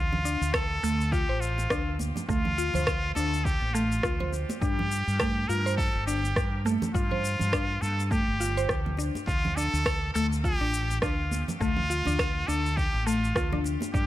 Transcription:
Already playing: D2 F4
0.13 low conga
0.25 D4, shaker
0.41 D2, shaker
0.53 A4, kick, cross-stick, claves, shaker
0.83 D2 A3, shaker
1.01 shaker
1.12 F4 G4, kick, shaker
1.29 A1 C5
1.40 F4, shaker
1.58 muted conga, shaker
1.70 D4, kick, cross-stick, shaker
1.99 high conga, shaker
2.16 muted conga, low conga, shaker
2.28 D2 A3 F4, kick, shaker
2.45 low conga
2.58 F4, shaker
2.74 D2 C5, low conga, shaker
2.87 kick, cross-stick, claves, shaker
3.15 D2 D4 A4, muted conga, shaker
3.34 shaker
3.44 G4, kick, shaker
3.61 A1, high conga
3.74 A3 F4, shaker
3.92 shaker
4.03 F4, kick, cross-stick, shaker
4.20 C5, muted conga, low conga
4.32 muted conga, shaker
4.49 muted conga, high conga, shaker
4.61 G2 D4 G4, kick, shaker
4.79 low conga
4.91 shaker
5.07 G2, shaker
5.20 A3, kick, cross-stick, claves, shaker
5.48 G2 F4 A#4, shaker
5.66 C5, shaker
5.77 A4, kick, shaker
5.95 G1
6.06 D4 G4, shaker
6.24 muted conga, shaker
6.36 G2, kick, cross-stick, shaker
6.65 A3, high conga, shaker
6.82 muted conga, low conga, shaker
6.94 G2 F4, kick, shaker
7.11 C5, low conga
7.25 shaker
7.39 G2, low conga, shaker
7.53 D4, kick, cross-stick, claves, shaker
7.81 G2 A4, muted conga, high conga, shaker
8.00 shaker
8.04 A4
8.10 A3 G4, kick, shaker
8.27 G1, high conga
8.40 F4, shaker
8.57 C5, shaker
8.69 D2, kick, cross-stick, shaker
8.86 muted conga, low conga
8.97 D4, muted conga, shaker
9.15 muted conga, high conga, shaker
9.27 D2 F4, kick, shaker
9.45 low conga
9.56 D4 A4, shaker
9.73 D2, shaker
9.86 kick, cross-stick, claves, shaker
10.14 D2 A3 A4, shaker
10.33 shaker
10.43 F4 G4, kick, shaker
10.61 A1 D4
10.74 shaker
10.91 muted conga, shaker
11.02 D4 F4, kick, cross-stick, shaker
11.31 high conga, shaker
11.48 muted conga, low conga, shaker
11.60 D2 A3 F4, kick, shaker
11.77 low conga
11.90 F4, shaker
12.06 D2 D4, low conga, shaker
12.19 kick, cross-stick, claves, shaker
12.47 D2 D4 A4, muted conga, shaker
12.66 shaker
12.76 G4, kick, shaker
12.94 A1, high conga
13.06 A3 F4, shaker
13.24 shaker
13.35 D2 F4, kick, cross-stick, shaker
13.52 D4, muted conga, low conga
13.64 muted conga, shaker
13.81 muted conga, high conga, shaker
13.94 G2 D4 G4, kick, shaker

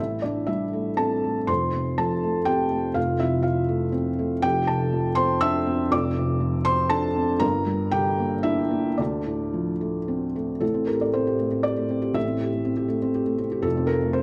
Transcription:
Already playing: A1 A3 E5
0.00 A2 E4
0.22 E3 D4 D5
0.47 G3 E4 E5
0.73 A3
0.97 C4 A4 A5
1.24 A3
1.47 F1 F2 C5 C6
1.73 C3
1.98 F3 A4 A5
2.23 A3
2.45 C4 G4 G5
2.71 A3
2.94 F1 F2 F4 F5
3.20 C3 E4 E5
3.43 F3 F4 F5
3.69 A3
3.92 C4
4.19 A3
4.42 F1 F2 G4 G5
4.67 C3 A4 A5
4.93 F3
5.15 C4 C5 C6
5.41 D4 E5 E6
5.66 C4
5.91 F1 F2 D5 D6
6.17 C3
6.40 F3
6.65 C4 C5 C6
6.90 D4 A4 A5
7.16 C4
7.40 G1 G2 A#4 A#5
7.66 G3
7.91 D3 G4 G5
8.19 A#3
8.43 D4 E4 E5
8.71 A#3
8.98 D2 D4 D5
9.27 A2
9.54 F3
9.81 A3
10.08 C4
10.36 A3
10.60 A1 A2 A4
10.74 C4
10.87 G4 A#4
11.01 A3 D5
11.14 C4 C5
11.27 G4
11.39 A3
11.51 C4
11.63 G4 D5
11.77 A3
11.90 C4
12.02 G4
12.14 A1 A2 E5
12.27 C4
12.40 G4
12.52 A3
12.65 C4
12.77 G4
12.88 A3
13.02 C4
13.15 G4
13.26 A3
13.38 C4
13.52 G4
13.62 F1 F2 A4
13.77 C4
13.87 F4 A#4
14.02 A3
14.13 C4 C5

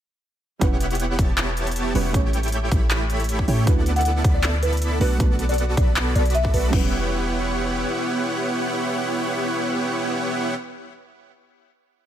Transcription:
0.59 E1 G3 B3 C#4 E4 G4 C#5 F#5, kick, closed hi-hat
0.63 B4
0.81 closed hi-hat
0.91 closed hi-hat
0.95 closed hi-hat
1.00 closed hi-hat
1.19 E1 B3 E4 G4 C#5 A5, kick, closed hi-hat
1.38 clap, closed hi-hat
1.57 closed hi-hat
1.67 closed hi-hat
1.71 closed hi-hat
1.76 closed hi-hat
1.94 E1 G3 B3 C#4 E4 F#4 G4 B4 C#5 F#5, open hi-hat
2.12 A1 A3 C#4 E4 G4 C#5 G5, kick, closed hi-hat
2.33 closed hi-hat
2.43 closed hi-hat
2.48 closed hi-hat
2.52 closed hi-hat
2.72 A1 A3 E4 G4 C#5 B5, kick, closed hi-hat
2.91 clap, closed hi-hat
3.10 closed hi-hat
3.20 closed hi-hat
3.24 closed hi-hat
3.29 closed hi-hat
3.39 kick
3.47 A2 A3 C#4 E4 G4 C#5 G5, open hi-hat
3.65 D2 A3 B3 D4 E4 F#4 A4 D5 F#5, kick, closed hi-hat
3.69 B4
3.86 closed hi-hat
3.96 F#5, closed hi-hat
4.01 closed hi-hat
4.05 closed hi-hat
4.24 D2 B3 E4 A4 D5 B5, kick, closed hi-hat
4.34 D5
4.44 clap, closed hi-hat
4.63 B4, closed hi-hat
4.73 closed hi-hat
4.77 closed hi-hat
4.82 closed hi-hat
5.00 B1 A3 B3 D4 F#4 A4 B4 D5 F#5, open hi-hat
5.18 B1 A3 B3 D4 F#4 A4 D5 F#5, kick, closed hi-hat
5.22 B4
5.39 closed hi-hat
5.49 D5, closed hi-hat
5.54 closed hi-hat
5.58 closed hi-hat
5.77 B1 B3 F#4 A4 D5 B5, kick, closed hi-hat
5.96 clap, closed hi-hat
6.16 B1 B3 F#4 A4 D5 B5, closed hi-hat
6.26 closed hi-hat
6.30 closed hi-hat
6.35 E5, closed hi-hat
6.45 kick
6.54 B1 B3 F#4 A4 B4 D5 B5, open hi-hat
6.70 E1 G3 B3 C#4 E4 G4 C#5 F#5, kick, crash
6.74 B4 F#5

